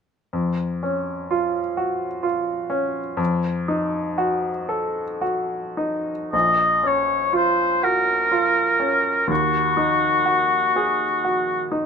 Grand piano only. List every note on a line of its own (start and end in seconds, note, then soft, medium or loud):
0.33 3.15 F2 soft
0.83 1.59 C#4 soft
1.31 2.05 F4 soft
1.77 2.24 F#4 soft
2.23 2.99 F4 soft
2.70 3.18 C#4 soft
3.17 6.28 F2 soft
3.68 4.49 D#4 soft
4.18 5.01 F#4 soft
4.69 5.23 A4 soft
5.21 6.12 F#4 soft
5.77 6.33 D#4 soft
6.33 9.25 A#1 soft
6.83 7.64 C#4 soft
7.33 8.12 F4 soft
7.83 8.32 F#4 soft
8.31 9.10 F4 soft
8.80 9.29 C#4 soft
9.27 11.86 D#2 soft
9.77 10.55 D#4 soft
10.26 11.04 F#4 soft
10.76 11.24 G#4 soft
11.25 11.86 F#4 soft
11.72 11.86 D#4 soft